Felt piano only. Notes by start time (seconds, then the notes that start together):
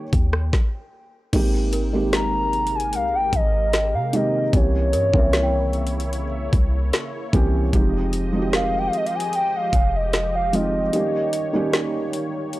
Already playing: D#3 G3 A#3 C#4 D#4 G4
1.33 D#3 G#3 A#3 C4 G4
1.93 D#3 G#3 A#3 C4 G4
4.13 D#3 G#3 A#3 C4 G4
4.53 E3 A#3 C4 C#4 G4
5.13 E3 A#3 C4 C#4 A#4
7.33 E3 A#3 C4 C#4 G4
7.73 F3 G#3 C4 D#4 G4
8.33 F3 G#3 C4 D#4 F#4
8.42 G4
10.53 F3 G#3 C4 D#4 F4
10.93 D#3 G3 A#3 C#4 G4
11.53 D#3 G3 A#3 C#4 G4